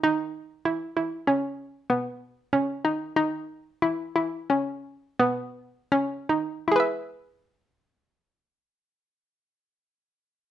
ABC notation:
X:1
M:5/4
L:1/8
Q:1/4=86
K:E
V:1 name="Synth pluck"
D2 E E C2 B,2 C D | D2 E E C2 B,2 C D | [EGBe]8- [EGBe]2 |]